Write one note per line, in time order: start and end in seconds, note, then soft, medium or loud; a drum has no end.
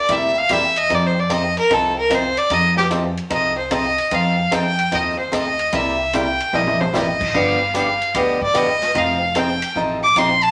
0.00 0.13 D5 medium
0.09 0.43 D2 medium
0.09 0.31 C3 medium
0.09 0.32 G3 soft
0.09 0.32 A#3 medium
0.09 0.32 E4 medium
0.09 0.32 G4 medium
0.09 0.39 E5 medium
0.09 kick soft
0.09 ride medium
0.38 0.54 F5 loud
0.49 0.84 E2 medium
0.49 0.61 C3 medium
0.49 0.61 G3 medium
0.49 0.62 A#3 medium
0.49 0.61 E4 medium
0.49 0.62 G4 loud
0.49 0.79 E5 medium
0.49 kick soft
0.49 hi-hat pedal medium
0.49 ride medium
0.76 0.96 D#5 loud
0.76 ride medium
0.90 1.54 F2 medium
0.90 1.12 F3 medium
0.90 1.12 C4 medium
0.90 1.12 D#4 medium
0.90 1.13 A4 medium
0.90 kick soft
0.90 ride medium
0.94 1.08 D5 medium
1.07 1.21 C5 medium
1.19 1.35 D5 medium
1.29 1.41 F3 medium
1.29 1.42 C4 medium
1.29 1.42 D#4 medium
1.29 1.42 A4 medium
1.29 1.58 D#5 medium
1.29 kick soft
1.29 hi-hat pedal medium
1.29 ride medium
1.57 1.75 A#4 medium
1.57 ride medium
1.70 2.35 C2 medium
1.70 1.93 F3 medium
1.70 1.93 C4 medium
1.70 1.93 D#4 medium
1.70 1.93 A4 medium
1.70 1.98 A4 medium
1.70 kick soft
1.70 ride medium
1.98 2.16 A#4 medium
2.10 2.22 F3 medium
2.10 2.22 C4 medium
2.10 2.22 D#4 medium
2.10 2.22 A4 medium
2.10 kick soft
2.10 hi-hat pedal medium
2.10 ride medium
2.14 2.39 C5 medium
2.37 2.55 D5 medium
2.37 ride medium
2.50 3.15 F2 loud
2.50 2.73 F3 medium
2.50 2.73 C4 medium
2.50 2.73 D#4 medium
2.50 2.74 A4 medium
2.50 2.76 D#5 medium
2.50 kick soft
2.50 ride medium
2.77 2.85 G4 medium
2.77 snare medium
2.90 3.03 F3 medium
2.90 3.03 C4 medium
2.90 3.03 D#4 medium
2.90 3.03 A4 medium
2.90 kick soft
2.90 hi-hat pedal soft
2.90 ride medium
3.17 ride soft
3.30 3.95 C2 medium
3.30 3.53 F3 medium
3.30 3.53 C4 medium
3.30 3.53 D#4 medium
3.30 3.54 A4 medium
3.30 3.57 D#5 medium
3.30 kick soft
3.30 ride medium
3.58 3.75 C5 medium
3.71 3.83 F3 medium
3.71 3.83 C4 medium
3.71 3.83 D#4 medium
3.71 3.83 A4 medium
3.71 4.16 D#5 loud
3.71 kick soft
3.71 hi-hat pedal medium
3.71 ride medium
3.98 ride medium
4.11 4.44 F2 medium
4.11 4.34 F3 medium
4.11 4.34 C4 medium
4.11 4.34 D#4 medium
4.11 4.34 A4 medium
4.11 4.56 F5 medium
4.11 kick soft
4.11 ride medium
4.51 4.86 F2 medium
4.51 4.64 F3 medium
4.51 4.64 C4 medium
4.51 4.64 D#4 medium
4.51 4.64 A4 medium
4.51 4.96 G5 loud
4.51 kick soft
4.51 hi-hat pedal medium
4.51 ride medium
4.79 ride medium
4.91 5.27 D#2 medium
4.91 5.14 F3 medium
4.91 5.14 C4 medium
4.91 5.15 D#4 medium
4.91 5.15 A4 medium
4.91 5.18 D#5 medium
4.91 kick soft
4.91 ride medium
5.19 5.36 C5 medium
5.32 5.67 D2 medium
5.32 5.44 F3 medium
5.32 5.44 C4 medium
5.32 5.45 D#4 medium
5.32 5.44 A4 medium
5.32 5.77 D#5 medium
5.32 kick soft
5.32 hi-hat pedal medium
5.32 ride medium
5.59 ride medium
5.72 6.37 C2 medium
5.72 5.95 C3 medium
5.72 5.95 G3 medium
5.72 5.95 A#3 medium
5.72 5.95 E4 medium
5.72 5.96 G4 medium
5.72 6.17 E5 medium
5.72 kick soft
5.72 ride medium
6.13 6.25 C3 medium
6.13 6.25 G3 medium
6.13 6.25 A#3 medium
6.13 6.26 E4 medium
6.13 6.26 G4 medium
6.13 6.57 G5 medium
6.13 kick soft
6.13 hi-hat pedal medium
6.13 ride medium
6.40 ride medium
6.53 6.87 A#1 medium
6.53 6.76 C3 medium
6.53 6.76 G3 medium
6.53 6.76 A#3 medium
6.53 6.76 E4 medium
6.53 6.76 G4 medium
6.53 6.82 D#5 medium
6.53 high tom medium
6.67 high tom medium
6.80 6.98 C5 medium
6.80 high tom medium
6.93 7.27 A1 loud
6.93 7.05 C3 medium
6.93 7.06 G3 medium
6.93 7.06 A#3 medium
6.93 7.06 E4 medium
6.93 7.06 G4 medium
6.93 7.37 D#5 medium
6.93 snare medium
6.93 hi-hat pedal medium
7.21 kick medium
7.21 crash medium
7.34 7.98 G1 medium
7.34 7.56 D3 medium
7.34 7.56 F3 medium
7.34 7.57 B3 medium
7.34 7.57 D4 medium
7.34 7.57 G4 medium
7.34 7.75 F5 medium
7.34 kick soft
7.74 7.86 D3 medium
7.74 7.86 F3 medium
7.74 7.86 B3 medium
7.74 7.86 D4 medium
7.74 7.86 G4 medium
7.74 8.19 F5 medium
7.74 kick soft
7.74 hi-hat pedal medium
7.74 ride medium
8.02 ride medium
8.14 8.79 D2 medium
8.14 8.37 D3 medium
8.14 8.37 F3 medium
8.14 8.37 B3 medium
8.14 8.38 D4 medium
8.14 8.38 G4 medium
8.14 8.42 D#5 medium
8.14 kick soft
8.14 ride medium
8.41 8.59 D5 medium
8.41 kick medium
8.54 8.66 D3 medium
8.54 8.66 F3 medium
8.54 8.67 B3 medium
8.54 8.67 D4 medium
8.54 8.67 G4 medium
8.54 8.99 D#5 loud
8.54 kick soft
8.54 hi-hat pedal medium
8.54 ride medium
8.82 snare soft
8.82 ride medium
8.95 9.60 F1 loud
8.95 9.17 F3 medium
8.95 9.17 C4 medium
8.95 9.18 D#4 medium
8.95 9.18 A4 medium
8.95 9.40 F5 medium
8.95 kick soft
8.95 ride medium
9.35 9.47 F3 medium
9.35 9.47 C4 medium
9.35 9.48 D#4 medium
9.35 9.47 A4 medium
9.35 9.77 G5 medium
9.35 kick soft
9.35 hi-hat pedal medium
9.35 ride medium
9.62 ride medium
9.75 10.10 A1 loud
9.75 9.98 F3 medium
9.75 9.98 C4 medium
9.75 9.99 D#4 medium
9.75 9.99 A4 medium
9.75 kick soft
10.03 10.20 D6 loud
10.16 10.50 A#1 medium
10.16 10.28 F3 medium
10.16 10.28 C4 medium
10.16 10.28 D#4 medium
10.16 10.28 A4 medium
10.16 10.44 C6 medium
10.16 kick soft
10.16 hi-hat pedal medium
10.16 ride medium
10.43 10.51 A5 loud
10.43 ride medium